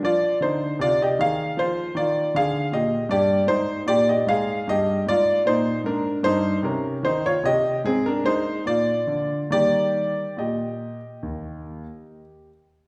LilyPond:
<<
  \new Staff \with { instrumentName = "Grand piano" } { \time 4/4 \key ees \major \tempo 4 = 75 <f' d''>8 <ees' c''>8 <f' d''>16 <g' ees''>16 <aes' f''>8 <f' c''>8 <f' d''>8 <aes' f''>8 <g' ees''>8 | <g' d''>8 <ees' c''>8 <g' d''>16 <g' ees''>16 <aes' f''>8 <g' ees''>8 <f' d''>8 <ees' c''>8 <d' bes'>8 | <ees' c''>8 <des' bes'>8 <ees' c''>16 <f' des''>16 <g' ees''>8 <c' aes'>16 <d' bes'>16 <ees' c''>8 <f' d''>4 | <g' d''>4 <g' ees''>2~ <g' ees''>8 r8 | }
  \new Staff \with { instrumentName = "Grand piano" } { \clef bass \time 4/4 \key ees \major f8 d8 c8 ees8 f8 ees8 d8 bes,8 | g,8 aes,8 bes,8 aes,8 g,8 aes,8 bes,8 aes,8 | g,8 c8 ees8 c8 aes,8 aes8 bes,8 d8 | <ees g bes>4 bes,4 ees,4 r4 | }
>>